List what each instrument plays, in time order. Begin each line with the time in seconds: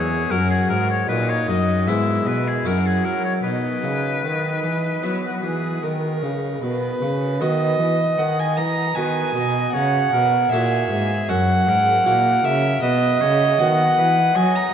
Already playing: harpsichord E2 C#4 G#4, cello E2, violin G#4, oboe C#5
0.30 cello F#2, harpsichord F#2 C#4 F#4, violin F#4, oboe A#4
0.50 oboe G#4
0.69 cello G#2, harpsichord G#2, oboe A#4
0.90 oboe C#5
1.08 cello A#2, harpsichord A#2, violin D#4, oboe B4
1.29 oboe C#5
1.48 cello F#2, harpsichord F#2, oboe D#5
1.87 cello G#2, harpsichord G#2 G#3 B3 E4, violin E4, oboe E5
2.26 cello B2, harpsichord B2, oboe B4
2.47 oboe G#4
2.65 cello F#2, harpsichord F#2 C#4 E4 F#4, violin F#4, oboe A#4
2.86 oboe G#4
3.04 cello F#3, harpsichord F#3, oboe A#4
3.24 oboe C#5
3.43 harpsichord B2, cello B2, violin D#4, oboe B4
3.84 harpsichord C#3, cello C#3
4.24 harpsichord D#3, cello D#3, violin D#4
4.63 harpsichord E3, cello E3
5.03 harpsichord F#3 B3 D#4 F#4, cello F#3, violin E4
5.25 violin F#4
5.43 cello E3, harpsichord E3, violin G#4
5.83 harpsichord D#3, cello D#3, violin A#4
6.23 cello C#3, harpsichord C#3
6.63 cello B2, harpsichord B2, violin B4
7.02 harpsichord C#3, cello C#3
7.41 harpsichord D#3 B3 D#4 F#4, cello D#3, violin D#5
7.80 harpsichord E3, cello E3
8.18 harpsichord D#3, cello D#3, oboe D#5, violin F#5
8.40 violin G#5
8.57 harpsichord E3, cello E3, violin A#5
8.96 harpsichord D#3 B3 D#4 F#4, cello D#3, oboe B4, violin G#5
9.34 harpsichord B2, cello B2, oboe D#5
9.74 harpsichord C#3, cello C#3, oboe C#5, violin F#5
10.12 cello B2, harpsichord B2, oboe A#4
10.52 cello A#2, harpsichord A#2 A#3 E4 F#4, oboe G#4, violin E5
10.91 harpsichord G#2, cello G#2
11.29 harpsichord F#2 C#4, cello F#2, oboe F#4, violin F#5
11.67 harpsichord G#2, cello G#2, oboe A#4
12.06 harpsichord A#2 A#3 E4 F#4, cello A#2, oboe A#4
12.44 harpsichord C#3, cello C#3, violin E5
12.82 cello B2, harpsichord B2, oboe B4, violin D#5
13.21 harpsichord C#3, cello C#3, oboe C#5
13.59 harpsichord D#3 B3 D#4 F#4, cello D#3, oboe D#5, violin F#5
13.98 harpsichord E3, cello E3, oboe B4
14.35 harpsichord F#3, cello F#3, oboe D#5, violin G#5
14.56 violin A#5